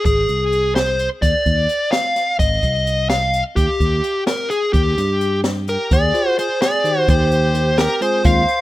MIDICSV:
0, 0, Header, 1, 6, 480
1, 0, Start_track
1, 0, Tempo, 468384
1, 50, Time_signature, 5, 3, 24, 8
1, 8824, End_track
2, 0, Start_track
2, 0, Title_t, "Lead electric guitar"
2, 0, Program_c, 0, 29
2, 60, Note_on_c, 0, 68, 71
2, 768, Note_off_c, 0, 68, 0
2, 772, Note_on_c, 0, 72, 78
2, 1107, Note_off_c, 0, 72, 0
2, 1251, Note_on_c, 0, 74, 79
2, 1960, Note_off_c, 0, 74, 0
2, 1964, Note_on_c, 0, 77, 90
2, 2416, Note_off_c, 0, 77, 0
2, 2451, Note_on_c, 0, 75, 91
2, 3168, Note_off_c, 0, 75, 0
2, 3172, Note_on_c, 0, 77, 78
2, 3508, Note_off_c, 0, 77, 0
2, 3649, Note_on_c, 0, 67, 82
2, 4331, Note_off_c, 0, 67, 0
2, 4378, Note_on_c, 0, 70, 75
2, 4600, Note_off_c, 0, 70, 0
2, 4610, Note_on_c, 0, 68, 67
2, 4845, Note_off_c, 0, 68, 0
2, 4849, Note_on_c, 0, 67, 62
2, 5531, Note_off_c, 0, 67, 0
2, 5833, Note_on_c, 0, 70, 59
2, 6071, Note_off_c, 0, 70, 0
2, 6075, Note_on_c, 0, 74, 84
2, 6511, Note_off_c, 0, 74, 0
2, 6549, Note_on_c, 0, 72, 74
2, 6765, Note_off_c, 0, 72, 0
2, 6783, Note_on_c, 0, 74, 79
2, 7271, Note_off_c, 0, 74, 0
2, 7275, Note_on_c, 0, 72, 83
2, 7971, Note_on_c, 0, 70, 85
2, 8004, Note_off_c, 0, 72, 0
2, 8194, Note_off_c, 0, 70, 0
2, 8219, Note_on_c, 0, 72, 72
2, 8456, Note_on_c, 0, 77, 106
2, 8461, Note_off_c, 0, 72, 0
2, 8824, Note_off_c, 0, 77, 0
2, 8824, End_track
3, 0, Start_track
3, 0, Title_t, "Flugelhorn"
3, 0, Program_c, 1, 56
3, 5835, Note_on_c, 1, 67, 51
3, 6049, Note_off_c, 1, 67, 0
3, 6066, Note_on_c, 1, 68, 68
3, 6507, Note_off_c, 1, 68, 0
3, 6550, Note_on_c, 1, 68, 57
3, 6765, Note_off_c, 1, 68, 0
3, 6780, Note_on_c, 1, 68, 79
3, 7222, Note_off_c, 1, 68, 0
3, 7266, Note_on_c, 1, 67, 70
3, 7937, Note_off_c, 1, 67, 0
3, 7983, Note_on_c, 1, 67, 73
3, 8200, Note_off_c, 1, 67, 0
3, 8223, Note_on_c, 1, 68, 71
3, 8440, Note_off_c, 1, 68, 0
3, 8449, Note_on_c, 1, 72, 83
3, 8824, Note_off_c, 1, 72, 0
3, 8824, End_track
4, 0, Start_track
4, 0, Title_t, "Tine electric piano"
4, 0, Program_c, 2, 4
4, 6292, Note_on_c, 2, 65, 66
4, 6297, Note_on_c, 2, 68, 55
4, 6297, Note_on_c, 2, 72, 76
4, 6629, Note_off_c, 2, 65, 0
4, 6631, Note_off_c, 2, 68, 0
4, 6631, Note_off_c, 2, 72, 0
4, 7009, Note_on_c, 2, 63, 58
4, 7011, Note_on_c, 2, 51, 65
4, 7012, Note_on_c, 2, 67, 61
4, 7015, Note_on_c, 2, 72, 69
4, 7682, Note_off_c, 2, 63, 0
4, 7683, Note_off_c, 2, 51, 0
4, 7683, Note_off_c, 2, 67, 0
4, 7685, Note_off_c, 2, 72, 0
4, 7732, Note_on_c, 2, 51, 68
4, 7732, Note_on_c, 2, 63, 59
4, 7733, Note_on_c, 2, 67, 60
4, 7736, Note_on_c, 2, 72, 70
4, 7899, Note_off_c, 2, 51, 0
4, 7899, Note_off_c, 2, 63, 0
4, 7900, Note_off_c, 2, 67, 0
4, 7902, Note_off_c, 2, 72, 0
4, 8208, Note_on_c, 2, 56, 64
4, 8209, Note_on_c, 2, 60, 54
4, 8213, Note_on_c, 2, 65, 67
4, 8440, Note_off_c, 2, 56, 0
4, 8440, Note_off_c, 2, 60, 0
4, 8444, Note_off_c, 2, 65, 0
4, 8452, Note_on_c, 2, 56, 73
4, 8453, Note_on_c, 2, 60, 65
4, 8456, Note_on_c, 2, 65, 79
4, 8619, Note_off_c, 2, 56, 0
4, 8619, Note_off_c, 2, 60, 0
4, 8621, Note_off_c, 2, 65, 0
4, 8824, End_track
5, 0, Start_track
5, 0, Title_t, "Fretless electric bass"
5, 0, Program_c, 3, 35
5, 57, Note_on_c, 3, 32, 92
5, 256, Note_off_c, 3, 32, 0
5, 299, Note_on_c, 3, 36, 62
5, 1105, Note_off_c, 3, 36, 0
5, 1258, Note_on_c, 3, 39, 75
5, 1357, Note_off_c, 3, 39, 0
5, 1498, Note_on_c, 3, 39, 84
5, 1698, Note_off_c, 3, 39, 0
5, 2457, Note_on_c, 3, 32, 82
5, 2658, Note_off_c, 3, 32, 0
5, 2696, Note_on_c, 3, 36, 67
5, 3503, Note_off_c, 3, 36, 0
5, 3659, Note_on_c, 3, 39, 71
5, 3758, Note_off_c, 3, 39, 0
5, 3897, Note_on_c, 3, 39, 78
5, 4098, Note_off_c, 3, 39, 0
5, 4860, Note_on_c, 3, 39, 90
5, 5060, Note_off_c, 3, 39, 0
5, 5100, Note_on_c, 3, 43, 66
5, 5905, Note_off_c, 3, 43, 0
5, 6061, Note_on_c, 3, 39, 75
5, 6260, Note_off_c, 3, 39, 0
5, 7260, Note_on_c, 3, 39, 85
5, 8063, Note_off_c, 3, 39, 0
5, 8454, Note_on_c, 3, 39, 73
5, 8653, Note_off_c, 3, 39, 0
5, 8824, End_track
6, 0, Start_track
6, 0, Title_t, "Drums"
6, 53, Note_on_c, 9, 42, 68
6, 54, Note_on_c, 9, 36, 90
6, 156, Note_off_c, 9, 36, 0
6, 156, Note_off_c, 9, 42, 0
6, 292, Note_on_c, 9, 42, 40
6, 394, Note_off_c, 9, 42, 0
6, 536, Note_on_c, 9, 42, 49
6, 639, Note_off_c, 9, 42, 0
6, 779, Note_on_c, 9, 38, 95
6, 779, Note_on_c, 9, 42, 61
6, 882, Note_off_c, 9, 38, 0
6, 882, Note_off_c, 9, 42, 0
6, 1016, Note_on_c, 9, 42, 52
6, 1118, Note_off_c, 9, 42, 0
6, 1255, Note_on_c, 9, 36, 83
6, 1256, Note_on_c, 9, 42, 74
6, 1357, Note_off_c, 9, 36, 0
6, 1358, Note_off_c, 9, 42, 0
6, 1495, Note_on_c, 9, 36, 58
6, 1495, Note_on_c, 9, 42, 38
6, 1597, Note_off_c, 9, 36, 0
6, 1597, Note_off_c, 9, 42, 0
6, 1733, Note_on_c, 9, 42, 53
6, 1836, Note_off_c, 9, 42, 0
6, 1973, Note_on_c, 9, 38, 93
6, 1973, Note_on_c, 9, 42, 66
6, 2076, Note_off_c, 9, 38, 0
6, 2076, Note_off_c, 9, 42, 0
6, 2213, Note_on_c, 9, 38, 31
6, 2213, Note_on_c, 9, 42, 50
6, 2315, Note_off_c, 9, 38, 0
6, 2315, Note_off_c, 9, 42, 0
6, 2454, Note_on_c, 9, 36, 88
6, 2455, Note_on_c, 9, 42, 71
6, 2557, Note_off_c, 9, 36, 0
6, 2557, Note_off_c, 9, 42, 0
6, 2693, Note_on_c, 9, 42, 49
6, 2694, Note_on_c, 9, 36, 61
6, 2795, Note_off_c, 9, 42, 0
6, 2797, Note_off_c, 9, 36, 0
6, 2940, Note_on_c, 9, 42, 61
6, 3042, Note_off_c, 9, 42, 0
6, 3173, Note_on_c, 9, 38, 87
6, 3173, Note_on_c, 9, 42, 63
6, 3276, Note_off_c, 9, 38, 0
6, 3276, Note_off_c, 9, 42, 0
6, 3418, Note_on_c, 9, 42, 54
6, 3521, Note_off_c, 9, 42, 0
6, 3656, Note_on_c, 9, 36, 88
6, 3658, Note_on_c, 9, 42, 73
6, 3758, Note_off_c, 9, 36, 0
6, 3761, Note_off_c, 9, 42, 0
6, 3896, Note_on_c, 9, 36, 63
6, 3899, Note_on_c, 9, 42, 49
6, 3999, Note_off_c, 9, 36, 0
6, 4002, Note_off_c, 9, 42, 0
6, 4136, Note_on_c, 9, 42, 58
6, 4239, Note_off_c, 9, 42, 0
6, 4375, Note_on_c, 9, 38, 94
6, 4375, Note_on_c, 9, 42, 67
6, 4478, Note_off_c, 9, 38, 0
6, 4478, Note_off_c, 9, 42, 0
6, 4618, Note_on_c, 9, 42, 50
6, 4721, Note_off_c, 9, 42, 0
6, 4854, Note_on_c, 9, 42, 60
6, 4857, Note_on_c, 9, 36, 98
6, 4957, Note_off_c, 9, 42, 0
6, 4960, Note_off_c, 9, 36, 0
6, 5102, Note_on_c, 9, 38, 26
6, 5102, Note_on_c, 9, 42, 50
6, 5204, Note_off_c, 9, 38, 0
6, 5204, Note_off_c, 9, 42, 0
6, 5338, Note_on_c, 9, 42, 49
6, 5441, Note_off_c, 9, 42, 0
6, 5573, Note_on_c, 9, 38, 88
6, 5573, Note_on_c, 9, 42, 65
6, 5676, Note_off_c, 9, 38, 0
6, 5676, Note_off_c, 9, 42, 0
6, 5817, Note_on_c, 9, 42, 52
6, 5919, Note_off_c, 9, 42, 0
6, 6058, Note_on_c, 9, 36, 98
6, 6059, Note_on_c, 9, 42, 76
6, 6161, Note_off_c, 9, 36, 0
6, 6161, Note_off_c, 9, 42, 0
6, 6298, Note_on_c, 9, 42, 47
6, 6400, Note_off_c, 9, 42, 0
6, 6544, Note_on_c, 9, 42, 64
6, 6646, Note_off_c, 9, 42, 0
6, 6781, Note_on_c, 9, 38, 96
6, 6781, Note_on_c, 9, 42, 73
6, 6883, Note_off_c, 9, 38, 0
6, 6883, Note_off_c, 9, 42, 0
6, 7020, Note_on_c, 9, 42, 55
6, 7123, Note_off_c, 9, 42, 0
6, 7258, Note_on_c, 9, 36, 95
6, 7258, Note_on_c, 9, 42, 79
6, 7360, Note_off_c, 9, 36, 0
6, 7361, Note_off_c, 9, 42, 0
6, 7498, Note_on_c, 9, 42, 52
6, 7600, Note_off_c, 9, 42, 0
6, 7734, Note_on_c, 9, 42, 63
6, 7836, Note_off_c, 9, 42, 0
6, 7973, Note_on_c, 9, 38, 94
6, 7973, Note_on_c, 9, 42, 71
6, 8076, Note_off_c, 9, 38, 0
6, 8076, Note_off_c, 9, 42, 0
6, 8214, Note_on_c, 9, 42, 57
6, 8317, Note_off_c, 9, 42, 0
6, 8448, Note_on_c, 9, 42, 68
6, 8453, Note_on_c, 9, 36, 104
6, 8550, Note_off_c, 9, 42, 0
6, 8556, Note_off_c, 9, 36, 0
6, 8695, Note_on_c, 9, 42, 46
6, 8797, Note_off_c, 9, 42, 0
6, 8824, End_track
0, 0, End_of_file